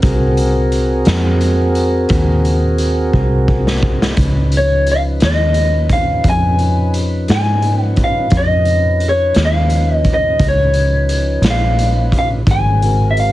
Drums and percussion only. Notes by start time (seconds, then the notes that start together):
0.02 kick, closed hi-hat
0.37 closed hi-hat
0.72 closed hi-hat
1.05 snare, closed hi-hat
1.41 closed hi-hat
1.75 closed hi-hat
2.09 kick, closed hi-hat
2.45 closed hi-hat
2.78 closed hi-hat
3.13 kick
3.48 kick
3.67 snare
3.83 kick
4.02 snare
4.17 kick, closed hi-hat
4.52 closed hi-hat
4.87 closed hi-hat
5.20 snare, closed hi-hat
5.54 closed hi-hat
5.89 kick, closed hi-hat
6.24 kick, closed hi-hat
6.59 closed hi-hat
6.94 closed hi-hat
7.28 snare, closed hi-hat
7.62 closed hi-hat
7.96 kick, closed hi-hat
8.30 kick, closed hi-hat
8.65 closed hi-hat
9.00 closed hi-hat
9.34 snare, closed hi-hat
9.70 closed hi-hat
10.04 kick, closed hi-hat
10.39 kick, closed hi-hat
10.74 closed hi-hat
11.09 closed hi-hat
11.43 snare, closed hi-hat
11.79 closed hi-hat
12.12 kick, closed hi-hat
12.47 kick, closed hi-hat
12.82 closed hi-hat
13.17 closed hi-hat